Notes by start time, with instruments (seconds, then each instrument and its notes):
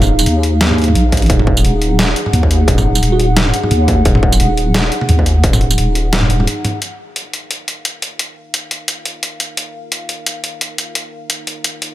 Already playing: wobble bass D#1, analog synth pad D#4 G#4 F5
0.02 mid tom, tambourine
0.03 tambourine
0.07 tambourine
0.19 tambourine
0.26 wobble bass D#2, closed hi-hat
0.43 closed hi-hat
0.61 snare, closed hi-hat
0.71 mid tom
0.78 closed hi-hat
0.82 closed hi-hat
0.84 closed hi-hat
0.88 mid tom
0.95 wobble bass A#1, closed hi-hat
1.12 kick, closed hi-hat, mid tom
1.17 closed hi-hat
1.22 closed hi-hat
1.26 closed hi-hat
1.30 wobble bass D#1, analog synth pad F#5, kick, closed hi-hat
1.39 mid tom
1.47 kick
1.57 tambourine
1.64 wobble bass D#1, closed hi-hat
1.82 closed hi-hat
1.99 snare, closed hi-hat, tambourine
2.16 closed hi-hat
2.26 mid tom
2.33 wobble bass D#2, closed hi-hat, mid tom
2.43 kick
2.51 closed hi-hat
2.68 wobble bass D#1, kick, closed hi-hat
2.78 mid tom, tambourine
2.95 tambourine
3.02 wobble bass D#1, closed hi-hat
3.12 fm electric piano F#4
3.19 fm electric piano F#4, closed hi-hat
3.37 snare, closed hi-hat
3.46 mid tom
3.54 closed hi-hat
3.63 mid tom
3.71 wobble bass D#2, closed hi-hat
3.88 kick, closed hi-hat, mid tom
4.05 wobble bass D#1, kick, closed hi-hat
4.15 mid tom
4.23 kick
4.32 tambourine
4.40 wobble bass D#1, closed hi-hat
4.57 closed hi-hat
4.74 snare, closed hi-hat, tambourine
4.92 closed hi-hat
5.01 mid tom
5.09 wobble bass D#2, closed hi-hat, mid tom
5.19 kick
5.26 closed hi-hat
5.44 wobble bass D#1, kick, closed hi-hat
5.53 mid tom, tambourine
5.61 closed hi-hat
5.71 tambourine
5.78 wobble bass D#1, closed hi-hat
5.95 closed hi-hat
6.13 snare, closed hi-hat
6.22 mid tom
6.30 wobble bass D#1, closed hi-hat
6.40 mid tom
6.47 closed hi-hat
6.65 closed hi-hat, mid tom
6.82 analog synth pad D#4 A#4 F5, closed hi-hat
7.16 closed hi-hat
7.33 closed hi-hat
7.51 closed hi-hat
7.68 closed hi-hat
7.85 closed hi-hat
8.02 closed hi-hat
8.19 closed hi-hat
8.54 closed hi-hat
8.71 closed hi-hat
8.88 closed hi-hat
9.05 closed hi-hat
9.23 closed hi-hat
9.40 closed hi-hat
9.57 closed hi-hat
9.92 closed hi-hat
10.09 closed hi-hat
10.26 closed hi-hat
10.44 closed hi-hat
10.61 closed hi-hat
10.78 closed hi-hat
10.95 closed hi-hat
11.30 closed hi-hat
11.47 closed hi-hat
11.64 closed hi-hat
11.82 closed hi-hat